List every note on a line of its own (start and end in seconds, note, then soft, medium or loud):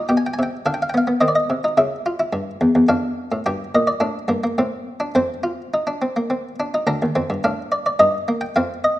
0.09 0.27 B2 medium
0.09 0.64 G4 medium
0.09 0.17 G5 soft
0.17 0.25 G#5 medium
0.26 0.34 G5 medium
0.34 0.42 G#5 medium
0.39 0.56 C3 medium
0.43 0.66 G5 medium
0.66 1.21 D3 medium
0.66 0.84 D4 medium
0.66 0.74 F5 soft
0.74 0.82 G5 medium
0.82 0.90 F5 medium
0.90 0.98 G5 medium
0.94 1.06 B3 medium
0.94 1.21 F5 medium
1.07 1.22 B3 medium
1.21 1.39 D#3 medium
1.21 1.63 C4 medium
1.21 1.28 D#5 medium
1.28 1.36 D5 medium
1.35 1.77 D#5 medium
1.50 1.67 C3 medium
1.64 1.78 D#4 medium
1.77 2.32 C#3 medium
1.77 1.95 E4 medium
1.77 2.86 E5 medium
2.06 2.20 F4 medium
2.20 2.87 E4 medium
2.33 2.50 G2 medium
2.61 2.74 E2 medium
2.75 2.89 E2 medium
2.89 3.30 F2 medium
2.89 3.43 D4 medium
2.89 3.44 F5 medium
3.32 3.45 A2 medium
3.46 3.63 G2 medium
3.46 4.00 G4 medium
3.46 3.64 G5 medium
3.75 3.92 A#2 medium
3.75 3.88 D#5 medium
3.87 5.11 D5 medium
4.00 4.18 A2 medium
4.00 4.18 D4 medium
4.28 4.46 G2 medium
4.28 4.42 A#3 medium
4.44 4.57 A#3 medium
4.58 5.13 A2 medium
4.58 4.99 C4 medium
5.00 5.14 D4 medium
5.15 6.55 F2 medium
5.15 5.33 C4 medium
5.15 6.55 C5 medium
5.43 5.61 F4 medium
5.74 5.87 D#4 medium
5.87 6.01 D4 medium
6.02 6.15 C4 medium
6.16 6.30 A#3 medium
6.30 6.48 C4 medium
6.60 6.73 D4 medium
6.74 6.88 D#4 medium
6.87 7.01 D2 medium
6.87 7.05 D4 medium
6.87 7.42 A#5 loud
7.02 7.16 D#2 medium
7.15 7.30 F2 medium
7.15 7.33 C4 medium
7.30 7.44 G2 medium
7.44 7.99 A2 medium
7.44 7.99 D4 medium
7.44 7.62 F5 medium
7.72 7.85 D5 medium
7.86 8.00 D5 medium
7.99 8.54 G2 medium
7.99 8.17 D#4 medium
7.99 8.40 D#5 loud
8.28 8.46 A#3 medium
8.41 8.55 G5 medium
8.56 8.99 F2 medium
8.56 8.99 C4 medium
8.56 8.73 F5 medium
8.84 8.99 D#5 medium